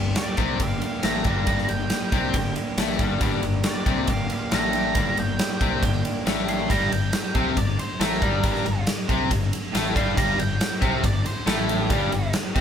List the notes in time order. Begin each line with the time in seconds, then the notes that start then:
Already playing: G1 G2 D3 G3 A#3 D4 G4
0.15 G3 A#3 D4 G4 D5, snare, ride
0.37 C2 C3 G3 A#3 C4 D4 G4, kick, ride
0.59 G1 G2 D3 G3 A#3 D4 G4 F5, kick, ride
0.80 G3 A#3 D4 G4 F5, ride
1.03 A1 A2 A3 A#5, snare, ride
1.23 G1 G2 G3 A#3 D4 G4, kick, ride
1.46 G1 G2 D3 G3 A#3 D4 G4, kick, ride
1.58 snare
1.69 G1 G2 G5, ride
1.89 G3 A#3 D4 G4, snare, ride
2.12 C2 C3 G3 A#3 C4 D4 G4, kick, ride
2.33 G1 G2 D3 G3 A#3 D4 G4, kick, ride
2.55 G3 A#3 D4 G4, ride
2.77 A1 A2 A3, snare, ride
2.89 snare
2.97 G1 G2 G3 A#3 D4 G4, kick, ride
3.19 G1 G2 D3 G3 A#3 D4 G4, kick, ride
3.42 G1 G2, ride
3.63 G3 A#3 D4 G4 D5, snare, ride
3.85 C2 C3 G3 A#3 C4 D4 G4, kick, ride
4.06 G1 G2 D3 G3 A#3 D4 G4 F5, kick, ride
4.28 G3 D4 G4, ride
4.33 F5
4.52 A1 A2 A3 A#5, snare, ride
4.71 G3 D4 G4, ride
4.93 G1 G2 D3 G3 A#3 D4 G4, kick, ride
5.17 G1 G2 G5, ride
5.37 G3 A#3 D4 G4, snare, ride
5.60 C2 C3 G3 A#3 C4 D4 G4, kick, ride
5.81 G1 G2 D3 G3 A#3 D4 G4, kick, ride
6.03 G3 D4 G4, ride
6.26 A1 A2 A3, snare, ride
6.47 G3 A#3 D4 G4 C6, ride
6.70 G1 G2 G3 A#5, kick, ride
6.92 G1 G2 G5, ride
7.13 snare, ride
7.35 C2 C3 C4 F5, kick, ride
7.57 G1 G2 D5, kick, ride
7.79 C5, ride
8.00 A1 A2 A3 A#4, snare, ride
8.12 snare
8.22 G1 G2 G3, kick, ride
8.43 G1 G2 G3, kick, ride
8.55 snare
8.66 G1 G2, ride
8.87 snare, ride
9.09 C2 C3 C4, kick, ride
9.31 G1 G2, kick, ride
9.53 ride
9.74 A1 A2 A3, snare, ride
9.94 G1 G2 G3 C6, kick, ride
10.16 G1 G2 G3 A#5, kick, ride
10.38 G1 G2 G5, ride
10.61 snare, ride
10.81 C2 C3 C4 F5, kick, ride
11.03 G1 G2 D5, kick, ride
11.26 C5, ride
11.46 A1 A2 A3 G4, snare, ride
11.69 ride
11.90 G1 G2 G3, kick, ride
12.11 G1 G2, ride
12.33 snare, ride
12.55 C2 C3 C4, kick, ride